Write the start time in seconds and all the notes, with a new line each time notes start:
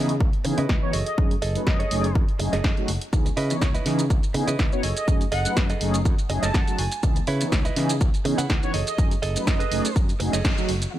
Already playing: C#3 E3 B3 C#4 D#4 E4 G#4 B4 D#5
0.09 closed hi-hat
0.20 C#2, kick
0.33 closed hi-hat
0.44 C#3 E3 B3 C#4 D#4 G#4, muted clean electric guitar stroke, open hi-hat
0.58 C#3 E4 B4 D#5, closed hi-hat
0.69 C#2, kick, snare
0.82 E3 B3 C#4 D#4 F#4 C#5
0.93 F#1 G#4 A4 D#5, open hi-hat
1.06 D#5, closed hi-hat
1.18 F#2 F#3 A3 C#4 D#4 G#4, kick
1.31 muted clean electric guitar stroke, closed hi-hat
1.42 F#1 G#4 A4 D#5, open hi-hat
1.55 F#3 A3 C#4 D#4 B4, muted fingered electric bass stroke, closed hi-hat
1.66 F#2 D#5, kick, snare
1.79 G#4 A4 C#5, closed hi-hat
1.91 F#1 F#3 A3 C#4 D#4 G#4, open hi-hat
2.04 closed hi-hat
2.15 F#2, kick
2.29 closed hi-hat
2.39 F#1 F#3 A3 C#4 D#4 G#4, muted clean electric guitar stroke, open hi-hat
2.53 F#1 G#4 A4 D#5, snare, closed hi-hat
2.64 F#2, kick, snare
2.77 F#3 A3 C#4 D#4 F#4, closed hi-hat
2.88 F#1, open hi-hat
3.01 closed hi-hat
3.12 C#2 E3 B3 C#4 D#4 G#4, kick, shaker
3.26 muted clean electric guitar stroke, closed hi-hat, shaker
3.37 C#3 E4 B4 D#5, open hi-hat
3.50 E3 B3 C#4 D#4 C#5, closed hi-hat, shaker
3.62 C#2, kick, snare, shaker
3.74 E4 B4 D#5, closed hi-hat, shaker
3.86 C#3 E3 B3 C#4 D#4 G#4, snare, open hi-hat
3.99 closed hi-hat, shaker
4.10 C#2, kick, shaker
4.23 closed hi-hat, shaker
4.34 C#3 E3 B3 C#4 D#4 G#4, muted clean electric guitar stroke, open hi-hat
4.47 C#3 E4 B4 D#5, closed hi-hat, shaker
4.59 C#2, kick, snare, shaker
4.72 E3 B3 C#4 D#4 F#4 C#5, shaker
4.83 F#1 G#4 A4 D#5, open hi-hat
4.96 D#5, closed hi-hat, shaker
5.07 F#2 F#3 A3 C#4 D#4 G#4, kick, shaker
5.21 muted clean electric guitar stroke, closed hi-hat, shaker
5.32 F#1 G#4 A4 D#5 F#5, open hi-hat
5.45 F#3 A3 C#4 D#4 B4, muted fingered electric bass stroke, closed hi-hat, shaker
5.57 F#2, kick, snare, shaker
5.70 G#4 A4 D#5, closed hi-hat, shaker
5.81 F#1 F#3 A3 C#4 D#4 G#4, open hi-hat
5.94 closed hi-hat, shaker
6.05 F#2, kick, shaker
6.18 closed hi-hat, shaker
6.29 F#1 F#3 A3 C#4 D#4 G#4 D#5, muted clean electric guitar stroke, open hi-hat
6.43 F#1 G#4 A4 D#5 A5, snare, closed hi-hat, shaker
6.54 F#2 F#5, kick, snare, shaker
6.67 F#3 A3 C#4 D#4 F#4, closed hi-hat, shaker
6.79 F#1 G#5, open hi-hat
6.92 closed hi-hat, shaker
7.03 C#2 E3 B3 C#4 D#4 G#4, kick, shaker
7.16 muted clean electric guitar stroke, closed hi-hat, shaker
7.27 C#3 E4 B4 C#5, open hi-hat
7.41 E3 B3 C#4 D#4 C#5, closed hi-hat, shaker
7.52 C#2, kick, snare, shaker
7.65 E4 B4 D#5, closed hi-hat, shaker
7.76 C#3 E3 B3 C#4 D#4 G#4, snare, open hi-hat
7.89 closed hi-hat, shaker
8.01 C#2, kick, shaker
8.14 closed hi-hat, shaker
8.25 C#3 E3 B3 C#4 D#4 G#4, muted clean electric guitar stroke, open hi-hat
8.38 C#3 E4 B4 F#5, closed hi-hat, shaker
8.50 C#2, kick, snare, shaker
8.63 E3 B3 C#4 D#4 F#4 C#5, shaker
8.74 F#1 G#4 A4 D#5, open hi-hat
8.87 D#5, closed hi-hat, shaker
8.98 F#2 F#3 A3 C#4 D#4 G#4, kick, shaker
9.11 muted clean electric guitar stroke, closed hi-hat, shaker
9.22 F#1 G#4 A4 D#5, open hi-hat
9.36 F#3 A3 C#4 D#4 B4, muted fingered electric bass stroke, closed hi-hat, shaker
9.47 F#2 D#5, kick, snare, shaker
9.59 G#4 A4 B4, closed hi-hat, shaker
9.71 F#1 F#3 A3 C#4 D#4 G#4, open hi-hat
9.85 closed hi-hat, shaker
9.96 F#2, kick, shaker
10.09 closed hi-hat, shaker
10.20 F#1 F#3 A3 C#4 D#4 G#4, muted clean electric guitar stroke, open hi-hat
10.33 F#1 G#4 A4 D#5, snare, closed hi-hat, shaker
10.45 F#2, kick, snare, shaker
10.57 F#3 A3 C#4 D#4 F#4, closed hi-hat, shaker
10.69 F#1, open hi-hat
10.82 closed hi-hat, shaker
10.93 E3 B3 C#4 D#4 F#4 G#4 F#5